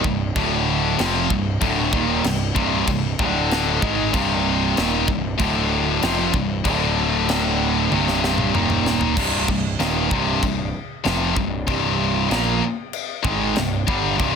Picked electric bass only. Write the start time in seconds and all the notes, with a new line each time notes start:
0.05 C1
0.36 D1
1.00 F1
1.30 C1
1.62 D1
1.93 D#1
2.25 C1
2.56 C1
2.88 C1
3.19 D1
3.82 G#1
4.14 C1
4.78 D#1
5.08 C1
5.40 D1
6.03 F1
6.34 C1
6.65 D1
7.91 C1
8.55 D#1
9.17 C1
9.48 C1
9.80 D#1
10.12 C1
10.43 C1
11.06 F1
11.37 C1
11.68 C1
12.31 A#1
13.24 G#1
13.57 C1
13.88 G1
14.20 C1